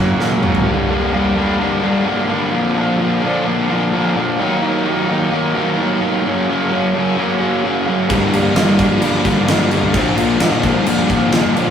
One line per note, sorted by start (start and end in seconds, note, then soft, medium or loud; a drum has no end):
0.00 0.13 F#2 loud
0.00 0.18 F#2 medium
0.00 0.19 C#3 medium
0.00 0.21 C#3 medium
0.00 0.19 F#3 medium
0.00 0.20 A#3 medium
0.00 0.68 A#3 medium
0.00 0.19 C#4 medium
0.00 0.20 C#4 medium
0.00 0.68 F#4 medium
0.19 0.41 F#2 medium
0.19 0.42 A#2 medium
0.19 0.42 C#3 medium
0.19 0.42 F#3 medium
0.19 0.43 A#3 medium
0.19 0.67 C#4 medium
0.19 0.43 C#4 medium
0.19 snare medium
0.32 high tom medium
0.42 0.65 F#2 medium
0.42 0.65 G#2 medium
0.42 0.65 C#3 medium
0.42 0.67 F#3 medium
0.42 0.66 F#3 medium
0.42 0.66 A#3 medium
0.42 0.66 C#4 medium
0.42 mid tom medium
0.55 floor tom loud
0.65 0.88 G2 medium
0.65 0.88 D3 loud
0.65 0.88 G3 loud
0.65 0.90 A#3 loud
0.65 0.91 D4 loud
0.89 1.11 G2 medium
0.89 1.12 D3 medium
0.89 1.12 G3 medium
0.89 1.14 A#3 medium
0.89 1.14 D4 medium
1.12 1.34 G2 medium
1.12 1.35 D3 medium
1.12 1.36 G3 loud
1.12 1.37 A#3 loud
1.12 1.37 D4 loud
1.36 1.57 G2 medium
1.36 1.58 D3 medium
1.36 1.59 G3 medium
1.36 1.60 A#3 loud
1.36 1.60 D4 loud
1.59 1.80 G2 medium
1.59 1.81 D3 loud
1.59 1.81 G3 loud
1.59 1.83 A#3 loud
1.59 1.83 D4 loud
1.82 2.03 G2 medium
1.82 2.04 D3 medium
1.82 2.05 G3 medium
1.82 2.06 A#3 loud
1.82 2.05 D4 loud
2.05 2.26 G2 medium
2.05 2.27 D3 medium
2.05 2.28 G3 medium
2.05 2.30 A#3 medium
2.05 2.29 D4 medium
2.28 2.51 G2 medium
2.28 2.51 D3 medium
2.28 2.52 G3 medium
2.28 2.53 A#3 loud
2.28 2.52 D4 medium
2.52 2.75 A#2 loud
2.52 2.75 D3 medium
2.52 2.76 F3 loud
2.52 2.77 A#3 medium
2.52 2.77 D4 loud
2.76 2.97 A#2 medium
2.76 2.99 D3 medium
2.76 2.99 F3 medium
2.76 3.00 A#3 loud
2.76 3.00 D4 loud
2.99 3.21 A#2 medium
2.99 3.22 D3 medium
2.99 3.22 F3 loud
2.99 3.24 A#3 loud
2.99 3.23 D4 loud
3.22 3.44 A#2 loud
3.22 3.45 D3 medium
3.22 3.46 F3 loud
3.22 3.47 A#3 loud
3.22 3.46 D4 loud
3.45 3.68 A#2 loud
3.45 3.68 D3 loud
3.45 3.69 F3 loud
3.45 3.70 A#3 loud
3.45 3.70 D4 loud
3.69 3.91 A#2 medium
3.69 3.92 D3 loud
3.69 3.93 F3 loud
3.69 3.93 A#3 loud
3.69 3.94 D4 loud
3.92 4.13 A#2 medium
3.92 4.14 D3 medium
3.92 4.15 F3 medium
3.92 4.17 A#3 medium
3.92 4.16 D4 medium
4.14 4.37 A#2 loud
4.14 4.38 D3 medium
4.14 4.38 F3 medium
4.14 4.39 A#3 medium
4.14 4.39 D4 medium
4.39 4.61 D#3 loud
4.39 4.62 F#3 loud
4.39 4.63 A#3 loud
4.39 4.63 D#4 loud
4.62 4.84 D#3 medium
4.62 4.86 F#3 loud
4.62 4.86 A#3 loud
4.62 4.85 D#4 loud
4.85 5.08 D#3 medium
4.85 5.09 F#3 loud
4.85 5.10 A#3 medium
4.85 5.09 D#4 medium
5.09 5.30 D#3 loud
5.09 5.30 F#3 medium
5.09 5.32 A#3 loud
5.09 5.32 D#4 loud
5.31 5.54 D#3 loud
5.31 5.54 F#3 loud
5.31 5.55 A#3 loud
5.31 5.55 D#4 loud
5.55 5.76 D#3 medium
5.55 5.77 F#3 loud
5.55 5.78 A#3 medium
5.55 5.78 D#4 loud
5.77 5.99 D#3 medium
5.77 6.00 F#3 medium
5.77 6.01 A#3 medium
5.77 6.01 D#4 loud
6.01 6.23 D#3 medium
6.01 6.23 F#3 medium
6.01 6.26 A#3 medium
6.01 6.24 D#4 medium
6.24 6.46 F#2 loud
6.24 6.47 C#3 loud
6.24 6.48 F#3 loud
6.24 6.49 A#3 loud
6.24 6.48 C#4 loud
6.47 6.68 F#2 medium
6.47 6.69 C#3 medium
6.47 6.69 F#3 medium
6.47 6.70 A#3 medium
6.47 6.70 C#4 medium
6.69 6.93 F#2 medium
6.69 6.94 C#3 medium
6.69 6.95 F#3 medium
6.69 6.96 A#3 medium
6.69 6.96 C#4 loud
6.94 7.16 F#2 medium
6.94 7.16 C#3 loud
6.94 7.17 F#3 loud
6.94 7.18 A#3 loud
6.94 7.18 C#4 loud
7.17 7.38 F#2 medium
7.17 7.38 C#3 loud
7.17 7.39 F#3 loud
7.17 7.40 A#3 loud
7.17 7.40 C#4 loud
7.39 7.61 F#2 medium
7.39 7.62 C#3 medium
7.39 7.63 F#3 loud
7.39 7.64 A#3 loud
7.39 7.64 C#4 medium
7.63 7.85 F#2 medium
7.63 7.85 C#3 medium
7.63 7.86 F#3 medium
7.63 7.87 A#3 medium
7.63 7.87 C#4 medium
7.86 8.08 F#2 medium
7.86 8.09 C#3 medium
7.86 8.09 F#3 medium
7.86 8.10 A#3 loud
7.86 8.09 C#4 medium
8.09 8.31 G2 medium
8.09 8.49 G2 loud
8.09 8.32 D3 loud
8.09 8.33 G3 medium
8.09 8.34 A#3 loud
8.09 8.34 D4 medium
8.09 kick loud
8.09 crash medium
8.32 8.54 G2 medium
8.32 8.54 D3 medium
8.32 8.55 G3 medium
8.32 8.56 A#3 loud
8.32 8.57 D4 medium
8.32 crash medium
8.55 8.76 G2 medium
8.55 8.77 D3 medium
8.55 8.66 F3 medium
8.55 8.78 G3 loud
8.55 8.79 A#3 medium
8.55 8.79 D4 loud
8.55 snare loud
8.55 crash medium
8.68 8.88 G3 medium
8.78 8.99 G2 loud
8.78 9.00 D3 loud
8.78 9.00 G3 loud
8.78 9.02 A#3 loud
8.78 9.01 D4 loud
8.78 kick loud
8.78 crash medium
8.90 9.00 F3 medium
9.00 9.23 G2 loud
9.00 9.23 D3 loud
9.00 9.24 G3 loud
9.00 9.25 A#3 loud
9.00 9.25 D4 loud
9.00 crash medium
9.13 9.33 F3 medium
9.24 9.45 G2 medium
9.24 9.46 D3 loud
9.24 9.46 G3 medium
9.24 9.48 A#3 loud
9.24 9.48 D4 loud
9.24 kick medium
9.24 crash medium
9.46 9.69 G2 medium
9.46 9.70 D3 medium
9.46 9.71 G3 medium
9.46 9.72 A#3 medium
9.46 9.72 D4 medium
9.46 snare loud
9.46 crash medium
9.59 9.69 F3 loud
9.71 9.93 G2 medium
9.71 9.93 D3 medium
9.71 9.94 G3 medium
9.71 9.95 A#3 medium
9.71 9.94 D4 medium
9.71 crash medium
9.82 9.92 C2 loud
9.94 10.33 A#1 loud
9.94 10.15 A#2 loud
9.94 10.16 D3 loud
9.94 10.16 F3 loud
9.94 10.18 A#3 loud
9.94 10.17 D4 loud
9.94 kick loud
9.94 crash medium
10.16 10.38 A#2 medium
10.16 10.39 D3 medium
10.16 10.39 F3 medium
10.16 10.41 A#3 loud
10.16 10.40 D4 medium
10.16 crash medium
10.39 10.50 G2 loud
10.39 10.60 A#2 medium
10.39 10.61 D3 medium
10.39 10.62 F3 medium
10.39 10.63 A#3 loud
10.39 10.63 D4 loud
10.39 snare loud
10.39 crash medium
10.52 10.72 A#2 medium
10.61 10.85 A#2 medium
10.61 10.85 D3 medium
10.61 10.86 F3 loud
10.61 10.87 A#3 loud
10.61 10.86 D4 loud
10.61 kick medium
10.61 crash medium
10.75 10.85 G2 loud
10.86 11.08 A#2 loud
10.86 11.09 D3 loud
10.86 11.09 F3 loud
10.86 11.11 A#3 loud
10.86 11.11 D4 loud
10.86 crash loud
10.98 11.18 G2 medium
11.09 11.32 A#2 medium
11.09 11.33 D3 medium
11.09 11.33 F3 loud
11.09 11.35 A#3 loud
11.09 11.34 D4 medium
11.09 kick medium
11.09 crash medium
11.32 11.55 A#2 medium
11.32 11.56 D3 medium
11.32 11.56 F3 medium
11.32 11.57 A#3 medium
11.32 11.57 D4 medium
11.32 snare loud
11.32 crash medium
11.45 11.55 G2 medium
11.56 11.70 A#2 medium
11.56 11.70 D3 loud
11.56 11.70 F3 medium
11.56 11.70 A#3 loud
11.56 11.70 D4 medium
11.56 crash medium